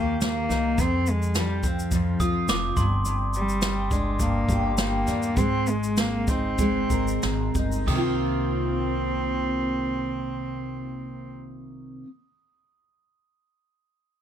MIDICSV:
0, 0, Header, 1, 6, 480
1, 0, Start_track
1, 0, Key_signature, -3, "minor"
1, 0, Tempo, 568720
1, 660, Time_signature, 4, 2, 24, 8
1, 3540, Tempo, 598205
1, 5460, Tempo, 645161
1, 6420, Tempo, 665927
1, 10991, End_track
2, 0, Start_track
2, 0, Title_t, "Glockenspiel"
2, 0, Program_c, 0, 9
2, 1858, Note_on_c, 0, 87, 90
2, 2104, Note_on_c, 0, 86, 87
2, 2105, Note_off_c, 0, 87, 0
2, 2324, Note_off_c, 0, 86, 0
2, 2335, Note_on_c, 0, 84, 81
2, 2682, Note_off_c, 0, 84, 0
2, 6418, Note_on_c, 0, 87, 59
2, 9393, Note_off_c, 0, 87, 0
2, 10991, End_track
3, 0, Start_track
3, 0, Title_t, "Cello"
3, 0, Program_c, 1, 42
3, 0, Note_on_c, 1, 58, 76
3, 174, Note_off_c, 1, 58, 0
3, 201, Note_on_c, 1, 58, 96
3, 684, Note_on_c, 1, 60, 94
3, 696, Note_off_c, 1, 58, 0
3, 928, Note_on_c, 1, 56, 90
3, 940, Note_off_c, 1, 60, 0
3, 1165, Note_on_c, 1, 55, 82
3, 1177, Note_off_c, 1, 56, 0
3, 1403, Note_on_c, 1, 53, 73
3, 1416, Note_off_c, 1, 55, 0
3, 2350, Note_off_c, 1, 53, 0
3, 2834, Note_on_c, 1, 55, 80
3, 3314, Note_on_c, 1, 56, 73
3, 3327, Note_off_c, 1, 55, 0
3, 3560, Note_on_c, 1, 58, 84
3, 3572, Note_off_c, 1, 56, 0
3, 4017, Note_off_c, 1, 58, 0
3, 4026, Note_on_c, 1, 58, 85
3, 4497, Note_on_c, 1, 60, 98
3, 4509, Note_off_c, 1, 58, 0
3, 4743, Note_on_c, 1, 56, 91
3, 4755, Note_off_c, 1, 60, 0
3, 4985, Note_on_c, 1, 58, 86
3, 4997, Note_off_c, 1, 56, 0
3, 5229, Note_on_c, 1, 60, 80
3, 5241, Note_off_c, 1, 58, 0
3, 6183, Note_off_c, 1, 60, 0
3, 6431, Note_on_c, 1, 60, 80
3, 8895, Note_off_c, 1, 60, 0
3, 10991, End_track
4, 0, Start_track
4, 0, Title_t, "Steel-string acoustic guitar"
4, 0, Program_c, 2, 25
4, 0, Note_on_c, 2, 51, 77
4, 0, Note_on_c, 2, 58, 62
4, 0, Note_on_c, 2, 63, 53
4, 0, Note_on_c, 2, 67, 59
4, 171, Note_off_c, 2, 58, 0
4, 181, Note_on_c, 2, 58, 56
4, 402, Note_off_c, 2, 63, 0
4, 413, Note_on_c, 2, 63, 54
4, 662, Note_on_c, 2, 41, 71
4, 709, Note_off_c, 2, 63, 0
4, 713, Note_off_c, 2, 51, 0
4, 713, Note_off_c, 2, 58, 0
4, 713, Note_off_c, 2, 67, 0
4, 1137, Note_on_c, 2, 53, 68
4, 1381, Note_on_c, 2, 60, 56
4, 1614, Note_off_c, 2, 41, 0
4, 1624, Note_on_c, 2, 41, 77
4, 1863, Note_on_c, 2, 65, 66
4, 2097, Note_off_c, 2, 53, 0
4, 2110, Note_on_c, 2, 53, 59
4, 2340, Note_off_c, 2, 41, 0
4, 2345, Note_on_c, 2, 43, 74
4, 2393, Note_off_c, 2, 65, 0
4, 2396, Note_off_c, 2, 53, 0
4, 2568, Note_off_c, 2, 43, 0
4, 2578, Note_on_c, 2, 43, 79
4, 3059, Note_on_c, 2, 55, 62
4, 3302, Note_off_c, 2, 60, 0
4, 3306, Note_on_c, 2, 62, 53
4, 3533, Note_off_c, 2, 43, 0
4, 3543, Note_on_c, 2, 43, 76
4, 3776, Note_on_c, 2, 67, 64
4, 3998, Note_off_c, 2, 55, 0
4, 4008, Note_on_c, 2, 55, 64
4, 4237, Note_off_c, 2, 62, 0
4, 4247, Note_on_c, 2, 62, 50
4, 4479, Note_off_c, 2, 55, 0
4, 4482, Note_on_c, 2, 56, 86
4, 4535, Note_off_c, 2, 43, 0
4, 4535, Note_off_c, 2, 67, 0
4, 4536, Note_off_c, 2, 62, 0
4, 4967, Note_on_c, 2, 60, 63
4, 5213, Note_on_c, 2, 63, 54
4, 5453, Note_off_c, 2, 56, 0
4, 5463, Note_on_c, 2, 56, 81
4, 5697, Note_on_c, 2, 70, 62
4, 5931, Note_off_c, 2, 60, 0
4, 5934, Note_on_c, 2, 60, 56
4, 6180, Note_off_c, 2, 63, 0
4, 6183, Note_on_c, 2, 63, 49
4, 6408, Note_on_c, 2, 48, 78
4, 6429, Note_off_c, 2, 56, 0
4, 6432, Note_on_c, 2, 51, 76
4, 6448, Note_off_c, 2, 60, 0
4, 6451, Note_on_c, 2, 58, 82
4, 6469, Note_off_c, 2, 63, 0
4, 6472, Note_on_c, 2, 60, 81
4, 6485, Note_off_c, 2, 70, 0
4, 6488, Note_on_c, 2, 65, 79
4, 9414, Note_off_c, 2, 48, 0
4, 9429, Note_off_c, 2, 51, 0
4, 9438, Note_off_c, 2, 58, 0
4, 9448, Note_off_c, 2, 60, 0
4, 9456, Note_off_c, 2, 65, 0
4, 10991, End_track
5, 0, Start_track
5, 0, Title_t, "Upright bass"
5, 0, Program_c, 3, 32
5, 0, Note_on_c, 3, 39, 81
5, 386, Note_off_c, 3, 39, 0
5, 417, Note_on_c, 3, 36, 76
5, 639, Note_off_c, 3, 36, 0
5, 660, Note_on_c, 3, 41, 86
5, 1825, Note_off_c, 3, 41, 0
5, 1859, Note_on_c, 3, 41, 81
5, 2079, Note_off_c, 3, 41, 0
5, 2095, Note_on_c, 3, 29, 88
5, 2317, Note_off_c, 3, 29, 0
5, 2337, Note_on_c, 3, 31, 83
5, 3741, Note_off_c, 3, 31, 0
5, 3774, Note_on_c, 3, 31, 87
5, 4211, Note_off_c, 3, 31, 0
5, 4242, Note_on_c, 3, 39, 81
5, 4462, Note_off_c, 3, 39, 0
5, 4482, Note_on_c, 3, 32, 87
5, 5666, Note_off_c, 3, 32, 0
5, 5696, Note_on_c, 3, 32, 66
5, 5915, Note_off_c, 3, 32, 0
5, 5940, Note_on_c, 3, 32, 81
5, 6160, Note_off_c, 3, 32, 0
5, 6180, Note_on_c, 3, 31, 80
5, 6404, Note_off_c, 3, 31, 0
5, 6418, Note_on_c, 3, 36, 74
5, 9393, Note_off_c, 3, 36, 0
5, 10991, End_track
6, 0, Start_track
6, 0, Title_t, "Drums"
6, 179, Note_on_c, 9, 82, 56
6, 183, Note_on_c, 9, 38, 95
6, 263, Note_off_c, 9, 82, 0
6, 267, Note_off_c, 9, 38, 0
6, 424, Note_on_c, 9, 38, 30
6, 426, Note_on_c, 9, 82, 49
6, 509, Note_off_c, 9, 38, 0
6, 511, Note_off_c, 9, 82, 0
6, 660, Note_on_c, 9, 36, 89
6, 660, Note_on_c, 9, 82, 61
6, 744, Note_off_c, 9, 36, 0
6, 745, Note_off_c, 9, 82, 0
6, 899, Note_on_c, 9, 82, 48
6, 984, Note_off_c, 9, 82, 0
6, 1032, Note_on_c, 9, 82, 45
6, 1117, Note_off_c, 9, 82, 0
6, 1138, Note_on_c, 9, 82, 61
6, 1141, Note_on_c, 9, 38, 99
6, 1222, Note_off_c, 9, 82, 0
6, 1225, Note_off_c, 9, 38, 0
6, 1377, Note_on_c, 9, 82, 47
6, 1380, Note_on_c, 9, 36, 77
6, 1462, Note_off_c, 9, 82, 0
6, 1464, Note_off_c, 9, 36, 0
6, 1513, Note_on_c, 9, 82, 45
6, 1598, Note_off_c, 9, 82, 0
6, 1616, Note_on_c, 9, 36, 80
6, 1616, Note_on_c, 9, 82, 62
6, 1700, Note_off_c, 9, 82, 0
6, 1701, Note_off_c, 9, 36, 0
6, 1857, Note_on_c, 9, 36, 67
6, 1860, Note_on_c, 9, 82, 48
6, 1941, Note_off_c, 9, 36, 0
6, 1944, Note_off_c, 9, 82, 0
6, 2096, Note_on_c, 9, 82, 60
6, 2100, Note_on_c, 9, 38, 102
6, 2181, Note_off_c, 9, 82, 0
6, 2184, Note_off_c, 9, 38, 0
6, 2336, Note_on_c, 9, 82, 47
6, 2337, Note_on_c, 9, 36, 91
6, 2421, Note_off_c, 9, 36, 0
6, 2421, Note_off_c, 9, 82, 0
6, 2577, Note_on_c, 9, 82, 63
6, 2661, Note_off_c, 9, 82, 0
6, 2816, Note_on_c, 9, 82, 46
6, 2900, Note_off_c, 9, 82, 0
6, 2945, Note_on_c, 9, 82, 46
6, 3029, Note_off_c, 9, 82, 0
6, 3053, Note_on_c, 9, 82, 63
6, 3056, Note_on_c, 9, 38, 99
6, 3137, Note_off_c, 9, 82, 0
6, 3140, Note_off_c, 9, 38, 0
6, 3300, Note_on_c, 9, 82, 47
6, 3301, Note_on_c, 9, 36, 81
6, 3385, Note_off_c, 9, 36, 0
6, 3385, Note_off_c, 9, 82, 0
6, 3541, Note_on_c, 9, 36, 77
6, 3542, Note_on_c, 9, 82, 66
6, 3621, Note_off_c, 9, 36, 0
6, 3622, Note_off_c, 9, 82, 0
6, 3774, Note_on_c, 9, 36, 72
6, 3778, Note_on_c, 9, 82, 46
6, 3854, Note_off_c, 9, 36, 0
6, 3858, Note_off_c, 9, 82, 0
6, 4007, Note_on_c, 9, 82, 61
6, 4010, Note_on_c, 9, 38, 99
6, 4087, Note_off_c, 9, 82, 0
6, 4091, Note_off_c, 9, 38, 0
6, 4243, Note_on_c, 9, 38, 32
6, 4245, Note_on_c, 9, 82, 49
6, 4323, Note_off_c, 9, 38, 0
6, 4325, Note_off_c, 9, 82, 0
6, 4367, Note_on_c, 9, 82, 47
6, 4447, Note_off_c, 9, 82, 0
6, 4481, Note_on_c, 9, 82, 56
6, 4482, Note_on_c, 9, 36, 90
6, 4561, Note_off_c, 9, 82, 0
6, 4562, Note_off_c, 9, 36, 0
6, 4722, Note_on_c, 9, 82, 46
6, 4802, Note_off_c, 9, 82, 0
6, 4857, Note_on_c, 9, 82, 44
6, 4937, Note_off_c, 9, 82, 0
6, 4965, Note_on_c, 9, 82, 57
6, 4967, Note_on_c, 9, 38, 95
6, 5045, Note_off_c, 9, 82, 0
6, 5047, Note_off_c, 9, 38, 0
6, 5210, Note_on_c, 9, 82, 44
6, 5212, Note_on_c, 9, 36, 84
6, 5290, Note_off_c, 9, 82, 0
6, 5292, Note_off_c, 9, 36, 0
6, 5458, Note_on_c, 9, 82, 60
6, 5460, Note_on_c, 9, 36, 75
6, 5532, Note_off_c, 9, 82, 0
6, 5534, Note_off_c, 9, 36, 0
6, 5694, Note_on_c, 9, 36, 71
6, 5695, Note_on_c, 9, 82, 49
6, 5768, Note_off_c, 9, 36, 0
6, 5770, Note_off_c, 9, 82, 0
6, 5824, Note_on_c, 9, 82, 42
6, 5898, Note_off_c, 9, 82, 0
6, 5934, Note_on_c, 9, 82, 52
6, 5938, Note_on_c, 9, 38, 96
6, 6009, Note_off_c, 9, 82, 0
6, 6012, Note_off_c, 9, 38, 0
6, 6175, Note_on_c, 9, 82, 47
6, 6177, Note_on_c, 9, 36, 76
6, 6250, Note_off_c, 9, 82, 0
6, 6251, Note_off_c, 9, 36, 0
6, 6303, Note_on_c, 9, 82, 52
6, 6377, Note_off_c, 9, 82, 0
6, 6419, Note_on_c, 9, 49, 67
6, 6420, Note_on_c, 9, 36, 85
6, 6491, Note_off_c, 9, 49, 0
6, 6492, Note_off_c, 9, 36, 0
6, 10991, End_track
0, 0, End_of_file